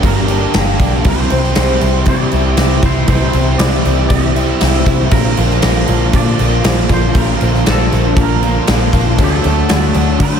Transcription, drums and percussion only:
0.03 kick loud
0.03 crash medium
0.28 crash medium
0.54 snare loud
0.54 crash medium
0.79 kick medium
0.79 crash medium
1.04 kick loud
1.04 crash medium
1.30 crash medium
1.44 snare soft
1.55 snare loud
1.55 crash medium
1.81 crash medium
2.06 kick loud
2.06 crash medium
2.31 crash medium
2.57 snare loud
2.57 crash medium
2.83 kick loud
2.83 crash medium
3.08 kick loud
3.08 crash medium
3.33 crash medium
3.59 snare loud
3.59 crash medium
3.85 snare soft
3.85 crash medium
4.10 kick loud
4.10 crash medium
4.36 crash medium
4.61 snare loud
4.61 crash medium
4.86 kick medium
4.86 crash medium
5.11 kick loud
5.11 crash medium
5.37 crash medium
5.50 snare soft
5.62 snare loud
5.62 crash medium
5.88 crash medium
6.13 kick loud
6.13 crash medium
6.39 crash medium
6.64 snare loud
6.64 crash medium
6.89 kick medium
6.89 crash medium
7.15 kick loud
7.15 crash medium
7.41 crash medium
7.54 snare soft
7.66 snare loud
7.66 crash medium
7.92 snare soft
7.92 crash medium
8.17 kick loud
8.17 crash medium
8.43 crash medium
8.67 snare loud
8.67 crash medium
8.93 kick medium
8.93 crash medium
9.19 kick loud
9.19 crash medium
9.44 crash medium
9.69 snare loud
9.69 crash medium
9.94 crash medium
10.20 kick loud
10.20 crash medium

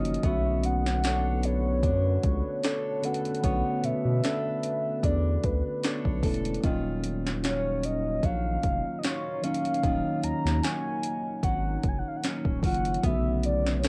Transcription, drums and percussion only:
0.05 closed hi-hat soft
0.14 closed hi-hat soft
0.23 kick loud
0.23 closed hi-hat medium
0.64 closed hi-hat medium
0.86 snare medium
1.04 snare loud
1.04 closed hi-hat medium
1.43 closed hi-hat medium
1.83 kick medium
1.83 closed hi-hat medium
2.23 kick loud
2.23 closed hi-hat medium
2.63 snare loud
2.63 closed hi-hat medium
3.04 closed hi-hat medium
3.14 closed hi-hat medium
3.25 closed hi-hat soft
3.35 closed hi-hat soft
3.44 kick loud
3.44 closed hi-hat medium
3.84 closed hi-hat medium
4.24 snare loud
4.24 closed hi-hat medium
4.63 closed hi-hat medium
5.03 kick medium
5.03 closed hi-hat medium
5.44 kick loud
5.44 closed hi-hat medium
5.83 snare loud
5.83 closed hi-hat medium
6.05 kick medium
6.23 kick medium
6.23 closed hi-hat medium
6.23 open hi-hat medium
6.34 closed hi-hat medium
6.45 closed hi-hat soft
6.54 closed hi-hat soft
6.63 kick loud
6.63 closed hi-hat medium
7.04 closed hi-hat medium
7.27 snare medium
7.44 snare loud
7.44 closed hi-hat medium
7.83 closed hi-hat medium
8.23 kick loud
8.23 closed hi-hat medium
8.63 kick loud
8.63 closed hi-hat medium
9.03 snare loud
9.03 closed hi-hat medium
9.44 closed hi-hat medium
9.54 closed hi-hat medium
9.65 closed hi-hat soft
9.74 closed hi-hat soft
9.84 kick loud
9.84 closed hi-hat medium
10.24 closed hi-hat medium
10.47 snare medium
10.64 snare loud
10.64 closed hi-hat medium
11.03 closed hi-hat medium
11.43 kick loud
11.43 closed hi-hat medium
11.83 kick loud
11.83 closed hi-hat medium
12.24 snare loud
12.24 closed hi-hat medium
12.45 kick medium
12.63 kick medium
12.63 closed hi-hat medium
12.63 open hi-hat medium
12.74 closed hi-hat medium
12.85 closed hi-hat soft
12.94 closed hi-hat soft
13.04 kick loud
13.04 closed hi-hat medium
13.43 closed hi-hat medium
13.67 snare medium
13.84 snare loud
13.84 closed hi-hat medium

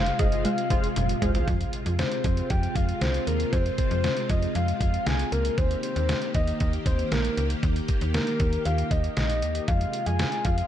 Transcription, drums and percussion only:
0.06 closed hi-hat medium
0.19 kick loud
0.19 closed hi-hat medium
0.32 closed hi-hat medium
0.45 closed hi-hat medium
0.58 closed hi-hat medium
0.70 kick loud
0.70 closed hi-hat medium
0.84 closed hi-hat medium
0.96 closed hi-hat medium
0.96 high tom medium
1.09 closed hi-hat medium
1.22 closed hi-hat medium
1.22 mid tom loud
1.35 closed hi-hat medium
1.35 floor tom loud
1.48 kick loud
1.48 closed hi-hat medium
1.61 closed hi-hat medium
1.73 closed hi-hat medium
1.86 closed hi-hat soft
1.99 snare loud
1.99 closed hi-hat medium
2.12 closed hi-hat medium
2.24 kick loud
2.24 closed hi-hat medium
2.37 closed hi-hat medium
2.50 kick loud
2.50 closed hi-hat medium
2.63 closed hi-hat soft
2.76 kick loud
2.76 closed hi-hat medium
2.89 closed hi-hat medium
3.01 snare loud
3.01 closed hi-hat medium
3.14 closed hi-hat medium
3.27 closed hi-hat medium
3.40 closed hi-hat medium
3.53 kick loud
3.53 closed hi-hat medium
3.66 closed hi-hat soft
3.78 kick medium
3.78 closed hi-hat medium
3.91 closed hi-hat medium
4.04 snare loud
4.04 closed hi-hat medium
4.17 closed hi-hat medium
4.30 kick loud
4.30 closed hi-hat medium
4.43 closed hi-hat medium
4.55 closed hi-hat medium
4.68 closed hi-hat soft
4.81 kick medium
4.81 closed hi-hat medium
4.94 closed hi-hat medium
5.07 snare loud
5.07 closed hi-hat medium
5.19 closed hi-hat medium
5.32 closed hi-hat medium
5.45 closed hi-hat medium
5.58 kick loud
5.58 closed hi-hat medium
5.71 closed hi-hat medium
5.83 closed hi-hat medium
5.96 closed hi-hat soft
6.09 snare loud
6.09 closed hi-hat medium
6.22 closed hi-hat medium
6.34 kick loud
6.34 closed hi-hat medium
6.47 closed hi-hat medium
6.60 kick loud
6.60 closed hi-hat medium
6.73 closed hi-hat soft
6.86 kick medium
6.86 closed hi-hat medium
6.99 closed hi-hat medium
7.12 snare loud
7.12 closed hi-hat medium
7.25 closed hi-hat medium
7.37 closed hi-hat medium
7.50 closed hi-hat medium
7.63 kick loud
7.63 closed hi-hat medium
7.76 closed hi-hat medium
7.88 kick medium
7.88 closed hi-hat medium
8.01 closed hi-hat medium
8.14 snare loud
8.14 closed hi-hat medium
8.27 closed hi-hat medium
8.40 kick loud
8.40 closed hi-hat medium
8.53 closed hi-hat medium
8.65 closed hi-hat medium
8.78 closed hi-hat soft
8.91 kick medium
8.91 closed hi-hat medium
9.04 closed hi-hat medium
9.17 snare loud
9.17 closed hi-hat medium
9.30 closed hi-hat medium
9.42 closed hi-hat medium
9.55 closed hi-hat medium
9.68 kick loud
9.68 closed hi-hat medium
9.81 closed hi-hat medium
9.93 closed hi-hat medium
10.06 closed hi-hat soft
10.19 snare loud
10.19 closed hi-hat medium
10.32 closed hi-hat medium
10.45 kick loud
10.45 closed hi-hat medium
10.58 closed hi-hat medium

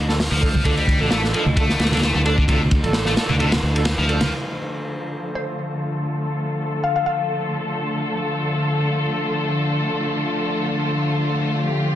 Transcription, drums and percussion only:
0.09 snare soft
0.20 snare loud
0.20 open hi-hat medium
0.43 kick medium
0.43 ride medium
0.54 kick loud
0.54 high conga medium
0.54 low conga medium
0.65 kick medium
0.65 ride medium
0.77 ride soft
0.88 kick loud
0.88 ride medium
1.11 snare loud
1.11 ride medium
1.24 snare soft
1.34 ride medium
1.47 low conga medium
1.57 kick loud
1.57 ride medium
1.70 snare soft
1.79 snare medium
1.79 ride medium
1.85 snare medium
1.85 ride medium
1.91 snare medium
1.91 ride medium
1.91 low conga medium
1.97 snare medium
1.97 ride medium
2.03 snare loud
2.03 ride medium
2.15 high conga medium
2.26 ride medium
2.38 kick medium
2.48 kick loud
2.48 ride medium
2.71 kick medium
2.71 ride medium
2.84 ride soft
2.84 high conga medium
2.93 snare loud
2.93 ride medium
3.06 snare soft
3.17 snare loud
3.17 ride medium
3.29 low conga medium
3.40 ride medium
3.52 snare loud
3.52 ride medium
3.76 ride medium
3.85 snare loud
3.85 ride medium
4.09 ride medium
4.21 snare medium
4.21 ride medium
4.21 high conga medium
4.21 low conga medium

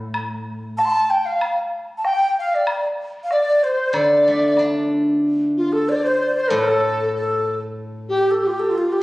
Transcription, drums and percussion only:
0.14 high woodblock medium
0.79 low woodblock soft
1.41 high woodblock medium
2.05 low woodblock soft
2.67 high woodblock medium
3.31 low woodblock soft
3.94 high woodblock medium
4.57 high woodblock soft
4.57 low woodblock soft

